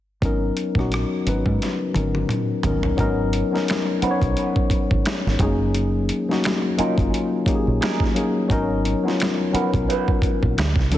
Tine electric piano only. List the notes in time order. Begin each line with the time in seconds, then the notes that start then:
0.22 F#3 B3 C#4 D#4 A#4
0.76 F#3 B3 C#4 D#4 F#4
1.25 F#3 B3 C#4 D#4 B4
1.94 F#3 B3 C#4 D#4 A#4
2.63 F#3 B3 C#4 D#4 A#4
2.97 F#3 B3 C#4 D#4 A#4
3.51 F#3 B3 C#4 D#4 A#4
4.01 F#3 B3 C#4 D#4 C5
4.11 C#5
5.39 F#3 G#3 C#4 D#4 G#4
5.47 A#3
6.29 F#3 A#3 C#4 D#4 F#4
6.77 F#3 A#3 C#4 D#4 F4
7.46 F#3 A#3 C#4 D#4 G4
7.55 G#4
8.14 F#3 A#3 C#4 D#4 G#4
8.49 F#3 B3 C#4 D#4 A#4
9.03 F#3 B3 C#4 D#4 F4
9.52 F#3 B3 C#4 D#4 A#4
10.91 F#3 C4 D4 E4 A4